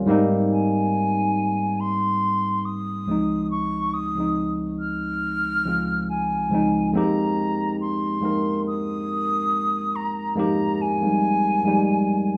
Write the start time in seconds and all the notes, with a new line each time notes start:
0.06 G#2 G3 A#3 C4
0.11 D#4
0.52 G#5
1.80 C6
2.65 D#6
3.06 C#2 F3 G#3 C4
3.11 D#4
3.51 C#6
3.94 D#6
4.15 C#2 F3 G#3 C4
4.20 D#4
4.79 F6
5.64 C#2 F3 G#3 C4
5.69 F4
6.10 G#5
6.50 C#2 F3 G#3 C4
6.55 D#4
6.93 F2 G#3 A#3 C4 D#4 A#5
6.97 G4
7.81 C6
8.20 F2 G#3 A#3 C4 D#4
8.25 A#4
8.67 D#6
9.96 A#5
10.35 F2 G#3 A#3 C4 D#4 A#5
10.39 G4
10.81 G#5
11.01 F2 G#3 A#3 C4 D#4
11.05 G3
11.63 F2 G#3 A#3 C4 D#4
11.68 G3